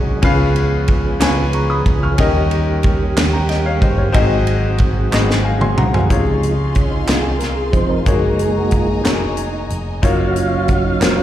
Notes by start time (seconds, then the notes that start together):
Already playing: C2 G#2 F#3 G#3 C#4 D#4 F#4 G#4 C#5 D#5 F#5
0.22 C#2 C#3 F3 B3 C#4 F4 G#4 B4 F5, kick, ride bell
0.56 ride bell
0.88 kick, ride bell
1.20 C#2 C#4 F4 G#4 B4 G#5, snare, clap, ride bell
1.53 A#5 C#6, ride bell
1.70 B5 D#6
1.86 C#2, kick, ride bell
2.03 C#6 F6
2.18 D#2 D#3 G3 A#3 C#4 D#4 G4 A#4 D#5, kick, ride bell
2.51 ride bell
2.83 kick, ride bell
3.16 D#2, snare, clap, ride bell
3.33 G5 A#5
3.49 D#5 G5, snare, ride bell
3.66 C#5 F5
3.81 G1 C5 D#5, kick, ride bell
3.98 A#4 C#5
4.12 G#1 G#2 F#3 G#3 C4 D#4 F#4 G#4 D#5, kick, ride bell
4.47 ride bell
4.78 kick, ride bell
5.11 G#1 B3 D#4 F#4 G#4 D#5, snare, clap
5.18 C4
5.31 snare
5.45 F5 G#5
5.61 G#5 C6, mid tom
5.77 C2 F#5 A#5, mid tom
5.94 F5 G#5, floor tom
6.09 C#2 C3 C#3 F3 G#3 D#4 F4 G#4 C#5 D#5 F5 C6, kick, closed hi-hat
6.43 closed hi-hat
6.75 C#4, kick, closed hi-hat
6.91 D#4
7.06 C2 C4 D#4 F4 G#4 D#5, snare, clap, closed hi-hat
7.23 G#4
7.39 A#4, snare, closed hi-hat
7.56 G#4
7.72 F1 F3 C4 D#4 C5, kick, closed hi-hat
7.89 A#4
8.06 F#1 G#3 A#3 D#4 F#4 G#4 C#5 G#5 A#5, kick, closed hi-hat
8.39 G#4, closed hi-hat
8.58 F#4
8.71 F4, kick, closed hi-hat
9.03 F1 A#3 D#4 F#4 G#4 C#5, snare, clap, closed hi-hat
9.37 closed hi-hat
9.70 F1, closed hi-hat
10.02 F#1 F#3 A#3 C#4 D#4 F4 F#4 C#5 F5, kick, closed hi-hat
10.29 F#4
10.36 F4, closed hi-hat
10.66 F#4, kick, closed hi-hat
10.84 D#4
11.00 F1 A#3 D#4 F4 F#4 A#4 C5, snare, clap, closed hi-hat